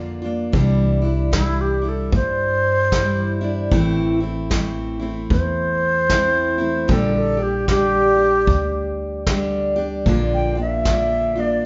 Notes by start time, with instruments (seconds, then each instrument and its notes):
Already playing: upright bass F2, steel-string acoustic guitar D3 A#3 D4 F4
0.22 steel-string acoustic guitar A#3 D4 F4
0.52 upright bass C2, steel-string acoustic guitar C3 E3 G3 D4 E4, kick
1.02 steel-string acoustic guitar G3 D4 E4
1.32 steel-string acoustic guitar E3 G3 D4 E4, alto flute E4, kick, snare
1.61 alto flute G4
1.82 steel-string acoustic guitar G3 D4 E4
1.89 alto flute A4
2.12 upright bass G2, alto flute C5, kick
2.91 steel-string acoustic guitar E3 G3 D4 E4, kick, snare
3.41 steel-string acoustic guitar G3 D4 E4
3.72 upright bass A1, steel-string acoustic guitar A2 E3 A3 C4 E4, kick
4.20 steel-string acoustic guitar A3 C4 E4
4.50 steel-string acoustic guitar E3 A3 C4 E4, kick, snare
5.00 steel-string acoustic guitar A3 C4 E4
5.30 upright bass E2, alto flute C5, kick
6.10 steel-string acoustic guitar E3 A3 C4 E4, kick, snare
6.58 steel-string acoustic guitar A3 C4 E4
6.88 upright bass A#1, steel-string acoustic guitar A#2 D3 G3 D4 G4, alto flute A4, kick
7.17 alto flute A4
7.37 steel-string acoustic guitar G3 D4 G4
7.43 alto flute G4
7.68 steel-string acoustic guitar D3 G3 D4 G4, alto flute G4, kick, snare
8.17 steel-string acoustic guitar G3 D4 G4
8.47 upright bass D2, kick
9.27 steel-string acoustic guitar D3 G3 D4 G4, kick, snare
9.76 steel-string acoustic guitar G3 D4 G4
10.06 upright bass A#1, steel-string acoustic guitar A#2 D3 A#3 D4 F4, kick
10.34 alto flute G5
10.55 steel-string acoustic guitar A#3 D4 F4
10.60 alto flute E5
10.85 steel-string acoustic guitar D3 A#3 D4, kick, snare
10.89 steel-string acoustic guitar F4
11.36 steel-string acoustic guitar A#3 D4 F4
11.40 alto flute D5